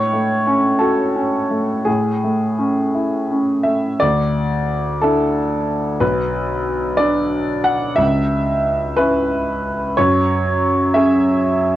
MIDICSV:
0, 0, Header, 1, 2, 480
1, 0, Start_track
1, 0, Key_signature, 3, "minor"
1, 0, Tempo, 676437
1, 819, Tempo, 715990
1, 1292, Time_signature, 6, 3, 24, 8
1, 2739, Tempo, 683371
1, 3219, Tempo, 656455
1, 8381, End_track
2, 0, Start_track
2, 0, Title_t, "Grand piano"
2, 0, Program_c, 0, 0
2, 0, Control_c, 0, 64, 127
2, 0, Note_on_c, 0, 45, 51
2, 0, Note_on_c, 0, 73, 78
2, 93, Note_on_c, 0, 57, 37
2, 333, Note_on_c, 0, 61, 37
2, 473, Note_off_c, 0, 57, 0
2, 559, Note_on_c, 0, 69, 63
2, 570, Note_off_c, 0, 73, 0
2, 572, Note_on_c, 0, 66, 36
2, 722, Note_off_c, 0, 61, 0
2, 819, Note_on_c, 0, 61, 36
2, 960, Note_off_c, 0, 66, 0
2, 1056, Note_on_c, 0, 57, 33
2, 1196, Note_off_c, 0, 61, 0
2, 1266, Note_off_c, 0, 45, 0
2, 1285, Note_on_c, 0, 68, 57
2, 1286, Note_off_c, 0, 69, 0
2, 1293, Note_off_c, 0, 57, 0
2, 1294, Note_on_c, 0, 45, 43
2, 1307, Control_c, 0, 64, 0
2, 1449, Control_c, 0, 64, 127
2, 1547, Note_on_c, 0, 57, 32
2, 1777, Note_on_c, 0, 61, 32
2, 1925, Note_off_c, 0, 57, 0
2, 2019, Note_on_c, 0, 64, 34
2, 2162, Note_off_c, 0, 61, 0
2, 2264, Note_on_c, 0, 61, 32
2, 2406, Note_off_c, 0, 64, 0
2, 2482, Note_on_c, 0, 76, 58
2, 2492, Note_on_c, 0, 57, 31
2, 2498, Note_off_c, 0, 68, 0
2, 2649, Note_off_c, 0, 61, 0
2, 2714, Note_off_c, 0, 45, 0
2, 2726, Note_on_c, 0, 74, 75
2, 2729, Note_off_c, 0, 76, 0
2, 2734, Note_off_c, 0, 57, 0
2, 2737, Note_on_c, 0, 38, 49
2, 2751, Control_c, 0, 64, 0
2, 2856, Control_c, 0, 64, 127
2, 3448, Note_on_c, 0, 69, 65
2, 3455, Note_off_c, 0, 74, 0
2, 3458, Note_on_c, 0, 62, 34
2, 3464, Note_on_c, 0, 64, 40
2, 4149, Note_off_c, 0, 62, 0
2, 4150, Note_off_c, 0, 38, 0
2, 4151, Note_off_c, 0, 64, 0
2, 4170, Note_on_c, 0, 71, 70
2, 4172, Note_on_c, 0, 35, 53
2, 4173, Note_off_c, 0, 69, 0
2, 4193, Control_c, 0, 64, 0
2, 4300, Control_c, 0, 64, 127
2, 4879, Note_on_c, 0, 74, 70
2, 4891, Note_off_c, 0, 71, 0
2, 4892, Note_on_c, 0, 62, 42
2, 5370, Note_on_c, 0, 78, 75
2, 5377, Note_off_c, 0, 74, 0
2, 5594, Note_off_c, 0, 35, 0
2, 5596, Note_off_c, 0, 62, 0
2, 5600, Note_on_c, 0, 76, 80
2, 5615, Note_on_c, 0, 37, 54
2, 5620, Note_off_c, 0, 78, 0
2, 5642, Control_c, 0, 64, 0
2, 5773, Control_c, 0, 64, 127
2, 6335, Note_off_c, 0, 76, 0
2, 6338, Note_on_c, 0, 71, 82
2, 6345, Note_on_c, 0, 61, 41
2, 6352, Note_on_c, 0, 64, 44
2, 7041, Note_off_c, 0, 37, 0
2, 7046, Note_off_c, 0, 61, 0
2, 7049, Note_off_c, 0, 64, 0
2, 7071, Note_off_c, 0, 71, 0
2, 7073, Note_on_c, 0, 73, 76
2, 7081, Note_on_c, 0, 42, 58
2, 7090, Control_c, 0, 64, 0
2, 7215, Control_c, 0, 64, 127
2, 7782, Note_on_c, 0, 76, 78
2, 7785, Note_off_c, 0, 73, 0
2, 7791, Note_on_c, 0, 61, 44
2, 7795, Note_on_c, 0, 68, 44
2, 8257, Note_off_c, 0, 76, 0
2, 8381, Note_off_c, 0, 42, 0
2, 8381, Note_off_c, 0, 61, 0
2, 8381, Note_off_c, 0, 68, 0
2, 8381, End_track
0, 0, End_of_file